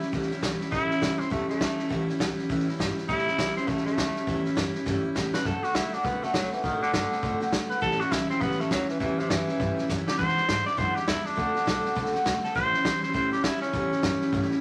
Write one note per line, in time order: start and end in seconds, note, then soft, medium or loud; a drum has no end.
0.00 0.12 G3 soft
0.00 0.12 C#4 medium
0.00 0.12 E4 medium
0.00 muted upright bass stroke medium
0.00 snare soft
0.12 0.30 C#2 medium
0.12 0.30 A2 medium
0.12 0.31 E3 medium
0.12 0.31 G3 loud
0.12 0.30 C#4 medium
0.12 0.29 E4 medium
0.12 kick loud
0.12 snare soft
0.22 snare soft
0.30 0.41 G3 soft
0.30 0.42 C#4 medium
0.30 0.42 E4 medium
0.30 muted upright bass stroke medium
0.30 snare soft
0.41 0.60 B1 medium
0.41 0.60 E3 medium
0.41 0.60 G3 medium
0.41 0.60 C#4 medium
0.41 0.58 E4 medium
0.41 kick medium
0.41 snare loud
0.41 hi-hat pedal medium
0.59 0.71 G3 soft
0.59 0.71 C#4 medium
0.59 0.71 E4 medium
0.59 muted upright bass stroke medium
0.59 snare soft
0.71 0.89 A1 medium
0.71 0.89 A2 medium
0.71 0.90 E3 medium
0.71 0.90 G3 medium
0.71 0.89 C#4 medium
0.71 1.21 E4 loud
0.71 0.87 E4 medium
0.71 kick loud
0.71 snare soft
0.89 1.00 G3 soft
0.89 1.01 C#4 soft
0.89 1.01 E4 medium
0.89 muted upright bass stroke medium
0.89 snare soft
1.00 1.19 C#2 medium
1.00 1.19 E3 medium
1.00 1.20 G3 medium
1.00 1.19 C#4 medium
1.00 kick medium
1.00 snare loud
1.00 hi-hat pedal medium
1.18 1.30 G3 soft
1.18 1.31 C4 medium
1.18 1.30 C#4 soft
1.18 1.30 E4 medium
1.18 muted upright bass stroke medium
1.18 snare soft
1.30 1.48 E2 medium
1.30 1.49 A2 medium
1.30 1.49 E3 medium
1.30 1.49 G3 medium
1.30 1.49 A3 medium
1.30 1.48 C#4 medium
1.30 1.46 E4 medium
1.30 kick loud
1.30 snare soft
1.48 1.58 G3 soft
1.48 2.07 A3 loud
1.48 1.59 C#4 soft
1.48 1.60 E4 medium
1.48 muted upright bass stroke medium
1.48 snare soft
1.59 1.78 D2 medium
1.59 1.78 E3 medium
1.59 1.78 G3 medium
1.59 1.77 C#4 medium
1.59 1.76 E4 medium
1.59 kick medium
1.59 snare loud
1.59 hi-hat pedal medium
1.77 1.89 G3 soft
1.77 1.89 C#4 medium
1.77 1.89 E4 medium
1.77 muted upright bass stroke soft
1.77 snare soft
1.89 2.08 C#2 medium
1.89 2.08 A2 medium
1.89 2.08 E3 medium
1.89 2.08 G3 medium
1.89 2.07 C#4 medium
1.89 2.06 E4 medium
1.89 kick loud
1.89 snare soft
2.07 2.19 G3 soft
2.07 2.19 C#4 medium
2.07 2.19 E4 medium
2.07 muted upright bass stroke medium
2.07 snare soft
2.19 2.37 B1 medium
2.19 2.37 E3 medium
2.19 2.38 G3 medium
2.19 2.38 C#4 medium
2.19 2.36 E4 medium
2.19 kick medium
2.19 snare loud
2.19 hi-hat pedal medium
2.37 2.49 G3 soft
2.37 2.49 C#4 medium
2.37 2.49 E4 medium
2.37 muted upright bass stroke medium
2.37 snare soft
2.49 2.66 A1 medium
2.49 2.68 A2 medium
2.49 2.68 E3 loud
2.49 2.68 G3 medium
2.49 2.67 C#4 loud
2.49 2.66 E4 loud
2.49 kick loud
2.49 snare soft
2.59 snare soft
2.67 2.78 G3 soft
2.67 2.79 C#4 medium
2.67 2.79 E4 medium
2.67 muted upright bass stroke soft
2.67 snare soft
2.79 2.96 G1 loud
2.79 2.97 E3 medium
2.79 2.97 G3 medium
2.79 2.96 C#4 medium
2.79 2.95 E4 medium
2.79 kick medium
2.79 snare loud
2.79 hi-hat pedal medium
2.96 3.08 G3 soft
2.96 3.08 C#4 medium
2.96 3.08 E4 medium
2.96 muted upright bass stroke medium
2.96 snare soft
3.08 3.26 A1 medium
3.08 3.26 A2 medium
3.08 3.27 E3 medium
3.08 3.27 G3 medium
3.08 3.26 C#4 medium
3.08 3.55 E4 loud
3.08 3.25 E4 medium
3.08 kick loud
3.08 snare soft
3.18 snare soft
3.26 3.37 G3 soft
3.26 3.38 C#4 soft
3.26 3.38 E4 medium
3.26 muted upright bass stroke soft
3.26 snare soft
3.37 3.56 B1 loud
3.37 3.56 E3 medium
3.37 3.56 G3 medium
3.37 3.56 C#4 medium
3.37 3.54 E4 medium
3.37 kick medium
3.37 snare loud
3.37 hi-hat pedal medium
3.56 3.67 G3 soft
3.56 3.69 C4 medium
3.56 3.68 C#4 medium
3.56 3.67 E4 medium
3.56 muted upright bass stroke medium
3.56 snare soft
3.67 3.85 C#2 medium
3.67 3.86 A2 medium
3.67 3.86 E3 medium
3.67 3.86 G3 medium
3.67 3.85 A3 medium
3.67 3.85 C#4 medium
3.67 3.84 E4 medium
3.67 kick loud
3.67 snare soft
3.77 snare soft
3.85 3.96 G3 soft
3.85 4.43 A3 loud
3.85 3.98 C#4 medium
3.85 3.97 E4 medium
3.85 muted upright bass stroke medium
3.85 snare soft
3.97 4.15 D2 medium
3.97 4.15 E3 medium
3.97 4.16 G3 medium
3.97 4.15 C#4 medium
3.97 4.14 E4 medium
3.97 kick medium
3.97 snare loud
3.97 hi-hat pedal medium
4.15 4.26 G3 soft
4.15 4.27 C#4 soft
4.15 4.27 E4 medium
4.15 muted upright bass stroke medium
4.15 snare soft
4.27 4.45 E2 medium
4.27 4.45 A2 medium
4.27 4.45 E3 medium
4.27 4.45 G3 medium
4.27 4.44 C#4 loud
4.27 4.43 E4 loud
4.27 kick loud
4.27 snare soft
4.44 4.55 G3 soft
4.44 4.56 C#4 medium
4.44 4.56 E4 medium
4.44 muted upright bass stroke medium
4.44 snare soft
4.55 4.74 F#2 medium
4.55 4.74 E3 medium
4.55 4.75 G3 medium
4.55 4.74 C#4 medium
4.55 4.73 E4 medium
4.55 kick medium
4.55 snare loud
4.55 hi-hat pedal medium
4.74 4.85 G3 soft
4.74 4.86 C#4 medium
4.74 4.86 E4 medium
4.74 muted upright bass stroke medium
4.74 snare soft
4.86 5.03 G2 medium
4.86 5.04 A2 medium
4.86 5.04 E3 medium
4.86 5.05 G3 medium
4.86 5.03 C#4 loud
4.86 5.02 E4 loud
4.86 kick loud
4.86 snare medium
5.03 5.15 G3 soft
5.03 5.16 C#4 medium
5.03 5.15 E4 medium
5.03 muted upright bass stroke medium
5.15 5.33 A2 medium
5.15 5.33 E3 medium
5.15 5.34 G3 medium
5.15 5.33 C#4 medium
5.15 5.31 E4 medium
5.15 kick loud
5.15 snare medium
5.15 hi-hat pedal medium
5.33 5.45 G3 soft
5.33 5.46 C#4 soft
5.33 5.45 E4 medium
5.33 5.48 B4 loud
5.33 muted upright bass stroke medium
5.33 snare medium
5.45 5.62 F#2 medium
5.45 5.63 D3 medium
5.45 5.64 A3 medium
5.45 5.63 C4 medium
5.45 5.62 F#4 medium
5.45 5.65 A4 medium
5.45 kick loud
5.45 snare soft
5.63 5.74 A3 soft
5.63 5.75 C4 soft
5.63 5.75 F#4 medium
5.63 5.77 F#4 loud
5.63 muted upright bass stroke medium
5.63 snare soft
5.74 5.93 D3 medium
5.74 5.93 A3 medium
5.74 5.93 C4 medium
5.74 5.95 E4 medium
5.74 5.91 F#4 medium
5.74 kick medium
5.74 snare loud
5.74 hi-hat pedal medium
5.93 6.03 A3 soft
5.93 6.04 C4 soft
5.93 6.07 D4 medium
5.93 6.04 F#4 medium
5.93 muted upright bass stroke soft
5.93 snare soft
6.04 6.21 C2 medium
6.04 6.22 D3 medium
6.04 6.23 A3 medium
6.04 6.24 B3 medium
6.04 6.23 C4 medium
6.04 6.21 F#4 loud
6.04 kick loud
6.04 snare soft
6.22 6.36 A3 medium
6.22 6.33 A3 soft
6.22 6.34 C4 soft
6.22 6.34 F#4 medium
6.22 muted upright bass stroke medium
6.22 snare soft
6.34 6.51 B1 loud
6.34 6.52 D3 medium
6.34 6.52 F#3 loud
6.34 6.53 A3 medium
6.34 6.51 C4 medium
6.34 6.50 F#4 medium
6.34 kick medium
6.34 snare loud
6.34 hi-hat pedal medium
6.51 6.64 E3 medium
6.51 6.63 A3 soft
6.51 6.63 C4 soft
6.51 6.63 F#4 medium
6.51 muted upright bass stroke medium
6.51 snare soft
6.63 6.80 A1 medium
6.63 6.82 D3 medium
6.63 6.81 D#3 medium
6.63 6.82 A3 medium
6.63 6.81 C4 medium
6.63 6.79 F#4 medium
6.63 kick loud
6.63 snare soft
6.81 6.93 D3 loud
6.81 6.92 A3 soft
6.81 6.93 C4 soft
6.81 6.93 F#4 medium
6.81 muted upright bass stroke medium
6.81 snare soft
6.92 7.10 G1 loud
6.92 7.11 D3 medium
6.92 7.51 D3 medium
6.92 7.11 A3 medium
6.92 7.10 C4 medium
6.92 7.09 F#4 medium
6.92 kick medium
6.92 snare loud
6.92 hi-hat pedal medium
7.10 7.21 A3 soft
7.10 7.22 C4 soft
7.10 7.22 F#4 medium
7.10 muted upright bass stroke medium
7.10 snare soft
7.22 7.40 F#1 medium
7.22 7.41 D3 medium
7.22 7.41 A3 medium
7.22 7.41 C4 medium
7.22 7.39 F#4 medium
7.22 kick loud
7.22 snare soft
7.40 7.51 A3 medium
7.40 7.52 C4 medium
7.40 7.52 F#4 medium
7.40 muted upright bass stroke medium
7.40 snare soft
7.51 7.69 G#1 medium
7.51 7.70 D3 medium
7.51 7.71 A3 medium
7.51 7.69 C4 medium
7.51 7.68 F#4 medium
7.51 kick medium
7.51 snare loud
7.51 hi-hat pedal medium
7.69 7.82 A3 soft
7.69 7.82 C4 soft
7.69 7.81 F#4 medium
7.69 7.81 B4 medium
7.69 muted upright bass stroke soft
7.69 snare soft
7.81 7.99 A1 medium
7.81 8.00 A2 medium
7.81 8.00 E3 medium
7.81 8.00 G3 medium
7.81 8.00 C#4 medium
7.81 7.98 E4 medium
7.81 8.02 A4 loud
7.81 kick loud
7.81 snare soft
7.91 snare soft
7.99 8.11 G3 medium
7.99 8.11 C#4 medium
7.99 8.11 E4 medium
7.99 8.13 F#4 loud
7.99 muted upright bass stroke medium
7.99 snare soft
8.11 8.29 B1 medium
8.11 8.29 E3 medium
8.11 8.30 G3 medium
8.11 8.29 C#4 medium
8.11 8.29 E4 medium
8.11 kick medium
8.11 snare loud
8.11 hi-hat pedal medium
8.29 8.41 G3 soft
8.29 8.43 C4 loud
8.29 8.41 C#4 soft
8.29 8.41 E4 medium
8.29 muted upright bass stroke medium
8.29 snare soft
8.41 8.58 C#2 medium
8.41 8.59 A2 medium
8.41 8.60 E3 medium
8.41 8.60 G3 medium
8.41 8.61 B3 loud
8.41 8.59 C#4 medium
8.41 8.57 E4 medium
8.41 kick loud
8.41 snare soft
8.51 snare soft
8.58 8.70 G3 medium
8.58 8.71 A3 loud
8.58 8.71 C#4 soft
8.58 8.70 E4 medium
8.58 muted upright bass stroke medium
8.58 snare soft
8.70 8.88 D2 medium
8.70 8.89 E3 medium
8.70 8.89 F#3 loud
8.70 8.89 G3 medium
8.70 8.89 C#4 medium
8.70 8.87 E4 medium
8.70 kick medium
8.70 snare loud
8.70 hi-hat pedal medium
8.88 8.99 E3 medium
8.88 9.00 G3 soft
8.88 9.00 C#4 soft
8.88 9.00 E4 medium
8.88 muted upright bass stroke medium
8.88 snare soft
9.00 9.17 E2 medium
9.00 9.18 A2 medium
9.00 9.20 E3 loud
9.00 9.19 E3 medium
9.00 9.19 G3 medium
9.00 9.18 C#4 medium
9.00 9.17 E4 medium
9.00 kick loud
9.00 snare soft
9.18 9.31 C3 loud
9.18 9.30 G3 soft
9.18 9.31 C#4 soft
9.18 9.30 E4 medium
9.18 muted upright bass stroke medium
9.18 snare soft
9.30 9.48 F#2 medium
9.30 9.87 E3 loud
9.30 9.48 E3 medium
9.30 9.49 G3 medium
9.30 9.48 C#4 medium
9.30 9.47 E4 medium
9.30 kick medium
9.30 snare loud
9.30 hi-hat pedal medium
9.48 9.59 G3 soft
9.48 9.60 C#4 soft
9.48 9.60 E4 medium
9.48 muted upright bass stroke medium
9.48 snare soft
9.59 9.77 G2 medium
9.59 9.78 A2 medium
9.59 9.78 E3 medium
9.59 9.78 G3 medium
9.59 9.77 C#4 medium
9.59 9.76 E4 medium
9.59 kick loud
9.59 snare soft
9.77 9.88 G3 medium
9.77 9.89 C#4 medium
9.77 9.89 E4 medium
9.77 muted upright bass stroke medium
9.77 snare soft
9.88 10.07 F#2 loud
9.88 10.07 E3 medium
9.88 10.07 G3 medium
9.88 10.07 C#4 medium
9.88 10.05 E4 medium
9.88 kick medium
9.88 snare medium
9.88 hi-hat pedal loud
10.06 10.19 G3 soft
10.06 10.19 C#4 soft
10.06 10.18 E4 medium
10.06 10.18 G4 medium
10.06 muted upright bass stroke medium
10.06 snare medium
10.18 10.37 E2 medium
10.18 10.37 B2 medium
10.18 10.37 E3 medium
10.18 10.37 G#3 medium
10.18 10.36 D4 medium
10.18 10.35 E4 medium
10.18 10.65 C5 loud
10.18 kick loud
10.18 snare soft
10.28 snare soft
10.36 10.46 E3 soft
10.36 10.48 G#3 soft
10.36 10.48 D4 soft
10.36 10.48 E4 medium
10.36 muted upright bass stroke medium
10.36 snare soft
10.47 10.66 G#2 medium
10.47 10.66 E3 medium
10.47 10.66 G#3 medium
10.47 10.65 D4 medium
10.47 10.64 E4 medium
10.47 kick medium
10.47 snare loud
10.47 hi-hat pedal medium
10.65 10.76 E3 soft
10.65 10.77 G#3 soft
10.65 10.77 D4 medium
10.65 10.77 E4 medium
10.65 10.79 D5 loud
10.65 muted upright bass stroke medium
10.65 snare soft
10.77 10.96 E2 medium
10.77 10.96 F#2 medium
10.77 10.96 B2 medium
10.77 10.96 E3 medium
10.77 10.96 G#3 medium
10.77 10.95 D4 medium
10.77 10.94 E4 loud
10.77 10.97 C5 loud
10.77 kick loud
10.77 snare soft
10.95 11.05 E3 soft
10.95 11.07 G#3 soft
10.95 11.07 D4 medium
10.95 11.07 E4 medium
10.95 11.07 G4 medium
10.95 muted upright bass stroke medium
10.95 snare soft
11.07 11.25 E2 medium
11.07 11.25 E3 medium
11.07 11.26 G#3 medium
11.07 11.25 D4 medium
11.07 11.27 E4 loud
11.07 11.24 E4 medium
11.07 kick medium
11.07 snare loud
11.07 hi-hat pedal loud
11.25 11.35 E3 soft
11.25 11.36 G#3 soft
11.25 12.12 D4 loud
11.25 11.37 D4 soft
11.25 11.37 E4 soft
11.25 muted upright bass stroke medium
11.25 snare soft
11.35 11.55 D2 medium
11.35 11.54 D3 medium
11.35 11.55 A3 medium
11.35 11.55 C4 medium
11.35 11.53 F#4 medium
11.35 kick loud
11.35 snare soft
11.54 11.65 A3 soft
11.54 11.66 C4 medium
11.54 11.66 F#4 medium
11.54 muted upright bass stroke medium
11.54 snare soft
11.66 11.84 B1 medium
11.66 11.84 D3 medium
11.66 11.85 A3 medium
11.66 11.84 C4 medium
11.66 11.82 F#4 medium
11.66 kick medium
11.66 snare loud
11.66 hi-hat pedal medium
11.84 11.95 A3 soft
11.84 11.96 C4 medium
11.84 11.96 F#4 medium
11.84 muted upright bass stroke medium
11.84 snare soft
11.95 12.13 C2 medium
11.95 12.14 D3 loud
11.95 12.14 A3 loud
11.95 12.13 C4 loud
11.95 12.12 F#4 loud
11.95 kick loud
11.95 snare soft
12.06 snare soft
12.13 12.24 A3 medium
12.13 12.25 C4 medium
12.13 12.25 F#4 medium
12.13 muted upright bass stroke medium
12.13 snare soft
12.24 12.43 D2 loud
12.24 12.43 D3 medium
12.24 12.44 A3 medium
12.24 12.44 C4 medium
12.24 12.42 F#4 medium
12.24 kick loud
12.24 snare loud
12.24 hi-hat pedal medium
12.43 12.55 A3 soft
12.43 12.55 C4 medium
12.43 12.55 F#4 medium
12.43 12.55 A4 medium
12.43 muted upright bass stroke medium
12.43 snare soft
12.54 12.73 A1 loud
12.54 12.73 A2 medium
12.54 12.73 E3 medium
12.54 12.74 G3 medium
12.54 12.73 C#4 medium
12.54 12.71 E4 medium
12.54 13.02 C5 loud
12.54 kick loud
12.54 snare soft
12.73 12.84 G3 soft
12.73 12.85 C#4 medium
12.73 12.85 E4 medium
12.73 muted upright bass stroke medium
12.73 snare soft
12.84 13.02 B1 medium
12.84 13.03 E3 medium
12.84 13.03 G3 medium
12.84 13.02 C#4 medium
12.84 13.01 E4 medium
12.84 kick medium
12.84 snare loud
12.84 hi-hat pedal medium
13.02 13.13 G3 soft
13.02 13.14 C#4 medium
13.02 13.14 E4 medium
13.02 13.14 C5 medium
13.02 muted upright bass stroke soft
13.02 snare soft
13.13 13.31 C#2 loud
13.13 13.32 A2 medium
13.13 13.33 E3 medium
13.13 13.33 G3 medium
13.13 13.32 C#4 loud
13.13 13.30 E4 medium
13.13 13.32 C5 medium
13.13 kick loud
13.13 snare soft
13.32 13.43 G3 soft
13.32 13.44 C#4 medium
13.32 13.44 E4 medium
13.32 13.45 G4 medium
13.32 muted upright bass stroke soft
13.32 snare soft
13.43 13.61 D#2 loud
13.43 13.62 E3 medium
13.43 13.61 E4 loud
13.43 13.60 E4 medium
13.43 kick medium
13.43 snare loud
13.43 hi-hat pedal loud
13.61 13.73 G3 medium
13.61 14.48 C#4 loud
13.61 13.73 C#4 soft
13.61 13.73 E4 medium
13.61 muted upright bass stroke soft
13.61 snare soft
13.73 13.91 E2 loud
13.73 13.91 A2 medium
13.73 13.92 E3 medium
13.73 13.92 G3 medium
13.73 13.91 C#4 medium
13.73 13.89 E4 medium
13.73 kick loud
13.73 snare soft
13.91 14.02 G3 soft
13.91 14.03 C#4 medium
13.91 14.03 E4 medium
13.91 muted upright bass stroke medium
13.91 snare soft
14.02 14.21 F#2 loud
14.02 14.21 E3 medium
14.02 14.21 G3 medium
14.02 14.21 C#4 medium
14.02 14.19 E4 medium
14.02 kick medium
14.02 snare loud
14.02 hi-hat pedal medium
14.20 14.32 G3 medium
14.20 14.33 C#4 medium
14.20 14.32 E4 medium
14.20 muted upright bass stroke medium
14.20 snare soft
14.32 14.50 G2 loud
14.32 14.51 A2 loud
14.32 14.51 E3 loud
14.32 14.51 G3 loud
14.32 14.50 C#4 loud
14.32 14.49 E4 loud
14.32 kick loud
14.32 snare soft
14.42 snare soft
14.50 14.61 G3 medium
14.50 14.61 C#4 medium
14.50 14.61 E4 medium
14.50 muted upright bass stroke medium
14.50 snare soft